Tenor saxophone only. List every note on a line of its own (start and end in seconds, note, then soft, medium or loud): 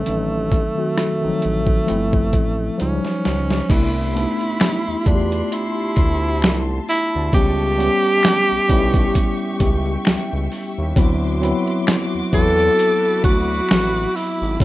0.00 2.80 A3 medium
2.82 3.73 C#4 medium
3.72 5.09 E4 medium
5.08 5.55 D4 medium
5.54 6.72 E4 loud
6.89 7.31 E4 loud
7.34 10.02 G4 loud
12.34 13.20 A4 loud
13.24 14.17 F#4 loud
14.15 14.61 E4 loud